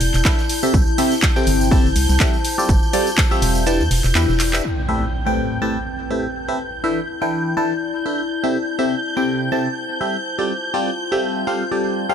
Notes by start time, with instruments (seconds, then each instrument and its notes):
Already playing: ambient pad E4 D5 A5, string machine G6
0.01 fm bass E1, open hi-hat, shaker
0.14 fm bass E1, clap, closed hi-hat, tambourine
0.25 fm electric piano D4 E4 A4 B4 E5, kick, snare, clap, tambourine, shaker
0.39 snare, tambourine
0.49 open hi-hat, shaker
0.63 fm electric piano C3 C4 E4 G4 A4 E5, tambourine
0.74 fm bass C2, kick, tambourine, shaker
0.87 tambourine
0.95 fm electric piano C3 C4 E4 G4 A4 E5, ambient pad C5, snare, open hi-hat, shaker
1.12 snare, tambourine
1.22 kick, snare, clap, tambourine, shaker
1.36 fm electric piano C3 C4 E4 G4 A4 G5, tambourine
1.47 fm bass G1, open hi-hat, shaker
1.61 tambourine
1.71 fm electric piano C3 C4 E4 G4 A4 A5, kick, open hi-hat, tambourine
1.85 fm bass G1, tambourine
1.96 fm bass C2, open hi-hat, shaker
2.09 fm bass C2, snare, tambourine
2.20 fm electric piano G3 C4 E4 G4 A4 E5, kick, snare, clap, tambourine, shaker
2.34 tambourine
2.45 ambient pad F4, open hi-hat, shaker
2.58 fm electric piano G3 C4 F4 G4 A4 D5, tambourine
2.69 fm bass G1, kick, tambourine, shaker
2.83 tambourine
2.93 fm electric piano G3 C4 F4 G4 A4 D5, open hi-hat, shaker
3.07 tambourine
3.18 kick, snare, clap, tambourine, shaker
3.31 fm electric piano G3 C4 F4 G4 A4 E5, tambourine
3.42 fm bass E1, open hi-hat, shaker
3.55 tambourine
3.67 fm electric piano E3 D4 E4 G4 B4 A5, ambient pad E4, tambourine, shaker
3.80 fm bass E2, tambourine
3.91 fm bass E1, open hi-hat
4.04 fm bass E1, ambient pad G5, clap, tambourine
4.11 ambient pad D5
4.15 fm bass E2, fm electric piano E3 D4 E4 G4 B4 E5, clap, tambourine, shaker
4.29 fm bass E1, snare, tambourine
4.40 snare, clap, open hi-hat, shaker
4.53 fm electric piano D4 E4 G4 B4 E5, clap, tambourine
4.64 ambient pad C4, string machine G6, crash, impact
4.87 fm electric piano A2 C4 G4 A4 B4 E5, ambient pad A5
5.15 ambient pad B4
5.26 fm electric piano A2 C4 G4 A4 B4 G5
5.62 fm electric piano A2 C4 G4 A4 B4 A5
6.11 fm electric piano A2 C4 G4 A4 B4 E5
6.48 fm electric piano C4 G4 A4 B4 E5
6.59 ambient pad E4
6.84 fm electric piano E3 D4 E4 A4 B4 E5
7.22 fm electric piano E3 D4 E4 A4 B4 G5, ambient pad D5
7.57 fm electric piano E3 D4 E4 A4 B4 A5
8.06 fm electric piano D4 E4 A4 B4 E5
8.44 fm electric piano C3 C4 E4 G4 A4 E5
8.79 fm electric piano C3 C4 E4 G4 A4 E5
8.94 ambient pad C5
9.17 fm electric piano C3 C4 E4 G4 A4 G5
9.52 fm electric piano C3 C4 E4 G4 A4 A5
10.01 fm electric piano G3 C4 E4 G4 A4 E5
10.25 ambient pad F4
10.39 fm electric piano G3 C4 F4 G4 A4 D5
10.74 fm electric piano G3 C4 F4 G4 A4 D5
11.12 fm electric piano G3 C4 F4 G4 A4 E5
11.24 ambient pad G5
11.47 fm electric piano G3 C4 F4 G4 A4 F5
11.71 fm electric piano G3 C4 F4 G4 A4 D5
12.09 fm electric piano G3 C4 F4 G4 A4 F5